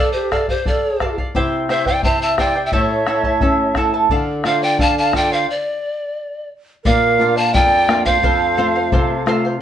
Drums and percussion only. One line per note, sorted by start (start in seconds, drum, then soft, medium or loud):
0.32 bombo rim medium
0.32 bombo low medium
0.48 bombo low medium
0.66 bombo low medium
1.00 bombo rim medium
1.00 bombo low medium
1.17 bombo low medium
1.35 bombo low medium
1.69 bombo rim medium
1.86 bombo low medium
2.03 bombo low medium
2.38 bombo rim medium
2.38 bombo low medium
2.72 bombo low medium
3.07 bombo rim medium
3.23 bombo low medium
3.41 bombo low medium
3.75 bombo rim medium
3.75 bombo low medium
4.09 bombo low medium
4.44 bombo rim medium
4.79 bombo low medium
5.13 bombo rim medium
5.13 bombo low medium
6.85 bombo low medium
7.54 bombo low medium
7.89 bombo rim medium
8.06 bombo low medium
8.23 bombo low medium
8.92 bombo low medium
9.27 bombo rim medium